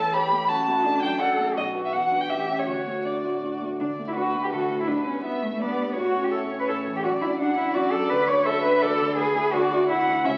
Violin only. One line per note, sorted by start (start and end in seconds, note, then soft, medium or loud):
0.00 0.15 A5 medium
0.13 0.50 B5 medium
0.48 1.02 A5 medium
1.02 1.20 G5 medium
1.21 1.39 F#5 medium
1.57 1.65 D#5 medium
1.85 1.94 E5 soft
1.92 2.22 F#5 medium
2.21 2.31 G5 soft
2.29 2.60 E5 medium
2.59 2.66 C#5 soft
2.67 3.06 C#5 soft
3.05 3.61 D5 soft
3.79 4.13 D5 soft
4.16 4.54 B4 soft
4.53 4.88 A4 soft
4.88 5.24 B4 soft
5.25 5.60 E5 soft
5.62 5.95 D5 soft
5.96 7.01 C#5 soft
7.04 7.39 D5 soft
7.39 7.74 F#5 medium
7.75 8.44 D5 medium
8.46 8.83 E5 medium
8.82 9.17 D5 medium
9.18 9.54 B4 medium
9.53 9.88 D5 medium
9.89 10.26 F#5 medium
10.25 10.38 E5 medium